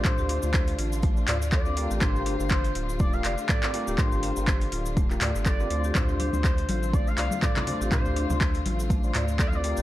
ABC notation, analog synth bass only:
X:1
M:4/4
L:1/16
Q:"Swing 16ths" 1/4=122
K:Dm
V:1 name="Analog synth bass" clef=bass
z D,,2 D,,3 A,,,4 D,,4- D,, A,,, | G,,,3 G,,,3 D,,,4 F,,, z4 D,,, | z G,,,2 G,,,3 D,,,4 D,, G,,,3 D,,2 | D,,3 D,,3 A,,,4 C,, z4 A,,, |
z D,,2 D,,3 A,,,4 D,,4- D,, A,,, |]